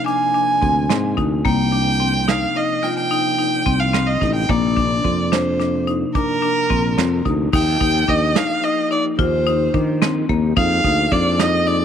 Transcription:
Already playing: C3 F3 A#3 D4
0.06 D4 G#5, closed hi-hat
0.34 D4, closed hi-hat
0.62 D2 C4, kick, closed hi-hat
0.89 G#2 C4, snare, closed hi-hat
1.17 D2 D#4, kick, closed hi-hat
1.44 C2 C3 F3 A#3 D4 G5, kick, closed hi-hat
1.72 D4, closed hi-hat
2.00 C4, closed hi-hat
2.28 D#4 F5, snare, closed hi-hat
2.56 D#4 D#5, closed hi-hat
2.83 F4 G5, snare, closed hi-hat
2.97 G5
3.11 D#4, closed hi-hat
3.38 D#4, closed hi-hat
3.66 C2 C4, kick, closed hi-hat
3.80 F5
3.94 C4, snare, closed hi-hat
4.07 D#5
4.21 A1 D#4, kick, snare, closed hi-hat
4.34 G5
4.48 A#1 C3 F3 A#3 D4 D5, kick, closed hi-hat
4.77 D4, kick, closed hi-hat
5.04 F2 C4, kick, closed hi-hat
5.32 D4 C5, snare, closed hi-hat
5.60 D4, snare, closed hi-hat
5.87 D#4, closed hi-hat
6.14 D4 A#4, kick, closed hi-hat
6.42 D4, closed hi-hat
6.70 A#1 C4, kick, closed hi-hat
6.98 F2 C4, snare, closed hi-hat
7.25 D2 D#4, kick, closed hi-hat
7.51 D#2 F3 A#3 D#4 G4 G5, kick, crash
7.80 D#2 D#4, kick, closed hi-hat
8.08 D#2 D4 D#5, kick, closed hi-hat
8.36 D#4 F5, snare, closed hi-hat
8.63 D#4 D#5, closed hi-hat
8.91 D#4 D5, closed hi-hat
9.19 D#2 F4 C5, kick, closed hi-hat
9.46 D#4, closed hi-hat
9.74 D#3 D4, kick, closed hi-hat
10.02 C4, snare, closed hi-hat
10.29 D#2 A#3, kick, closed hi-hat
10.55 F2 F3 A#3 D#4 G#4 F5, kick, closed hi-hat
10.84 D2 D#4, kick, closed hi-hat
11.12 F2 D4 D5, kick, closed hi-hat
11.39 D#4 D#5, snare, closed hi-hat
11.67 D#4 D5, closed hi-hat

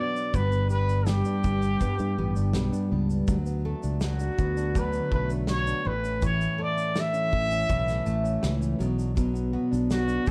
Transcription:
Already playing: B2 F#3 B3 D4 F#4
0.00 D5
0.15 D4, shaker
0.34 G1 G2 B3 B4, kick, shaker
0.52 B3, shaker
0.70 B3 G4 B4, shaker
0.89 D4, shaker
1.06 G3 B3 G4, snare, shaker
1.25 D4, shaker
1.44 G1 B3 D4, kick, shaker
1.62 D4, shaker
1.81 G2 B3, kick, shaker
1.99 G2 B3, shaker
2.18 A1 B3 G4
2.36 G1 D4, shaker
2.53 B1 G3 B3, snare, shaker
2.73 D4, shaker
2.91 C#2 B3 D4
3.10 D4, shaker
3.27 D2 F#3, kick, shaker
3.46 B3, shaker
3.65 A3 A4
3.83 C#2 D4, shaker
4.01 F#3 B3 F#4, snare, shaker
4.19 D4, shaker
4.38 D2 B3, kick, shaker
4.57 D4, shaker
4.75 D3 F#3 B4, kick, shaker
4.93 B3, shaker
5.12 B1 A3 A4 B4, kick
5.30 D4, shaker
5.47 F#3 B3 C#5, snare, shaker
5.66 D4, shaker
5.85 A1 A2 E3 B4
6.04 C#4, shaker
6.22 A2 E3 C#5, kick, shaker
6.41 A3, shaker
6.58 A3 A4
6.62 D5
6.77 C#4, shaker
6.95 E3 A3, snare, shaker
7.00 E5
7.14 C#4, shaker
7.33 A1 A3 C#4, kick
7.51 C#4, shaker
7.69 B1 A2 E3, kick, shaker
7.88 A3, snare, shaker
8.06 A1 A3 A4, shaker
8.24 C#4, shaker
8.42 C#2 E3 A3, snare, shaker
8.61 C#4, shaker
8.79 B1 B2 F#3, shaker
8.98 D4, shaker
9.15 B2 F#3, kick, shaker
9.34 B3, shaker
9.53 B3 F#4
9.71 B1 D4, shaker
9.90 F#3 B3 F#4, snare, shaker
10.08 D4, shaker
10.26 A1 B3, kick, shaker

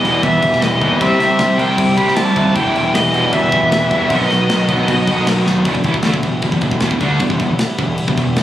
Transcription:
Already playing: G3 B3 E4 B4 D#5
0.02 E1 E2 B2 E3, crash
0.07 E3 G3
0.16 E3 G3
0.21 E2 B2 E3 G3 B3 E5, kick, crash
0.30 E3 G3
0.38 E2 B2 E3 G3
0.43 E1 E3 G3, kick, crash
0.53 E3 G3, snare
0.61 E1 E2 B2 E3 G3 B3 D#5, snare, crash
0.69 E3 G3
0.77 E2 B2 E3 G3
0.81 D#2 E3 G3, kick, crash
0.90 E3 G3
1.00 C2 C3 G3 C4 C5 E5, kick, crash
1.07 C3 G3
1.15 C3 G3
1.20 C2 C3 G3 C4 E5, snare, crash
1.31 C3 G3
1.39 C2 C3 G3 C4, snare, crash
1.47 C3 G3
1.54 C3 G3
1.58 C2 C3 G3 C4 E4 G5, crash
1.62 C3
1.69 C3 G3
1.77 C3 G3 C4, kick, crash
1.84 C3 G3
1.92 C3 G3
1.97 C2 C3 G3 C4 G4 B5, kick, crash
2.01 C3
2.08 C3 G3, snare
2.15 C2 C3 G3 C4 E4 A5, snare, crash
2.23 C3 G3
2.30 C3 G3
2.36 D#2 C3 G3 C4, kick, crash
2.45 C3 G3
2.55 E1 E2 B2 E3 G3 B3 E4 B4 G5, kick, crash
2.63 E3 G3
2.70 E3 G3
2.75 E1 E2 B2 E3, crash
2.79 G3
2.85 E3 G3
2.93 E1 E2 B2 E3 G3 B3 D#5, snare, crash
3.01 E3 G3
3.10 E3 G3
3.14 E1 E2 B2 G3, crash
3.18 E3
3.25 E3 G3
3.32 E2 B2 E3 G3 B3 E5, kick, crash
3.41 E3 G3
3.49 E3 G3, kick, crash
3.53 E1 E2 B2
3.57 E3 G3
3.63 E3 G3
3.72 E1 E2 B2 E3 G3, snare, crash
3.80 E3 G3
3.87 E3 G3, kick
3.91 E1 E2 B2 E3, crash
3.96 G3
4.02 E3 G3
4.10 B1 B2 D#3 F#3 B3 D#4 D#5, kick, crash
4.18 B2 D#3
4.26 B2 D#3
4.30 B1 B2 D#3 F#3, snare, crash
4.41 B2 D#3
4.49 B1 B2 D#3 F#3 B3, snare, crash
4.56 B2 D#3
4.65 B2 D#3
4.69 B1 B2 D#3 F#3 B3, kick, crash
4.80 B2 D#3
4.88 B2 D#3 F#3 B3, kick, crash
4.96 B2 D#3
5.04 B2 D#3, kick, crash
5.08 B1 B2 F#3 B3
5.12 D#3
5.19 B2 D#3
5.25 B1 B2 D#3 F#3 B3, snare, crash
5.34 B2 D#3
5.41 B2 D#3
5.46 D#2 B2 D#3 F#3 B3, snare
5.50 B2
5.57 B2 D#3
5.65 E1 E2 B2 G3 B3 E4 B4, kick, crash
5.75 E1 E2 B2, kick
5.84 A1 A2 E3, kick, crash
5.94 E1 E2 B2, kick
6.03 D2 D3 A3, snare, crash
6.13 E1 E2 B2, kick
6.23 E1 E2 B2, kick, crash
6.42 E1 E2 B2, kick, crash
6.52 E1 E2 B2, kick
6.61 E1 E2 B2, kick, crash
6.71 E1 E2 B2, kick
6.80 E1 E2 B2, snare, crash
6.91 E1 E2 B2, kick
7.00 D2 D3 A3 D4, kick, crash
7.20 E1 E2 B2, kick, crash
7.30 E1 E2 B2, kick
7.39 E1 E2 B2, kick, crash
7.49 muted distorted electric guitar stroke, muted picked electric bass stroke
7.59 snare, crash
7.78 E1 E2 B2, kick, crash
7.98 crash
8.08 E1 E2 B2, kick
8.17 E1 E2 B2, kick, crash
8.36 E1 E2 B2, snare, crash

